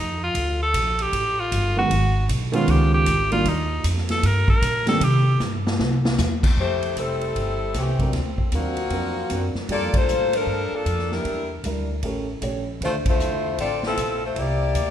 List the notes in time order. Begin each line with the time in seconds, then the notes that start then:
Already playing: F2 D#4
0.23 F4
0.34 D2, kick, ride
0.62 A4
0.74 A#1, kick, hi-hat pedal, ride
0.99 G4, ride
1.12 A1, kick, ride
1.39 F4
1.51 G1, kick, hi-hat pedal, ride
1.76 D#3 F#3 G#3 B3 F#4
1.90 G#1, kick, ride
2.29 B1, kick, hi-hat pedal, ride
2.52 D#3 G#3 B3 C#4 F4, ride
2.68 C#2 G4, kick, ride
2.94 G4
3.06 G#1, kick, hi-hat pedal, ride
3.31 D#3 G3 A#3 D4 F4, ride
3.45 D#2 D#4, kick, ride
3.84 F2, kick, hi-hat pedal, ride
3.97 snare
4.09 A4, snare, ride
4.23 G2 A#4, kick, ride
4.48 A#4, kick
4.62 A#2, kick, hi-hat pedal, ride
4.86 D#3 G3 A#3 C4 G4 A4, snare, ride
5.01 C3 G4, kick, ride
5.40 G2, snare, hi-hat pedal
5.67 snare
5.79 C2, snare
6.05 snare
6.18 E2, snare, hi-hat pedal
6.43 kick, crash
6.57 F2 A3 E4 G4 C5, kick
6.82 ride
6.96 F1 G3 C4 E4 A4, kick, hi-hat pedal, ride
7.21 ride
7.36 G1, kick, ride
7.74 C2 C4, kick, snare, hi-hat pedal, ride
7.78 E3 A3 G4
7.99 F#3 C4 D4 A#4, kick, ride
8.13 D2, kick, snare, ride
8.38 kick
8.52 D#2 F#3 A#3 C4 D4 F4 F#4 A#4, kick, hi-hat pedal, ride
8.77 ride
8.90 F2 F#3 C4 D4 A#4, kick, ride
9.30 F#2 F#3 C4 D4 A#4, kick, hi-hat pedal, ride
9.54 muted upright bass stroke, snare
9.68 G2 G3 A#3 D4 F4 G4 A4 D5, kick, ride
9.80 F2
9.94 D2 A#3 F4 A4 C5, kick, ride
10.06 A2, hi-hat pedal
10.33 F3 D4 A4 A#4, ride
10.47 G2, kick
10.72 F3 A#3 D4 A4, muted upright bass stroke
10.85 F2, kick, hi-hat pedal, ride
10.99 snare
11.12 G3 D4 E4 A#4, snare
11.25 E2, kick, ride
11.63 D2 G3 D4 E4 A#4, kick, hi-hat pedal, ride
12.03 A1 A3 C#4 G4 A#4, kick, ride
12.41 A#1 A3 C#4 G4 C#5, kick, hi-hat pedal, ride
12.81 D2 D3 D4 E4 C5 E5, kick, ride
12.85 A3 F4 C5
13.06 A3 E4 F4, kick, ride
13.10 C5
13.19 E2, hi-hat pedal
13.58 A1 C4 F4 A4 D5, kick, ride
13.83 C4 A4, snare
13.87 F3 E4
13.97 A#1, kick, hi-hat pedal, ride
14.25 A3 E4 F4 C5
14.36 C2 A#3 E4 G4 D5, kick, ride
14.75 D2, kick, hi-hat pedal, ride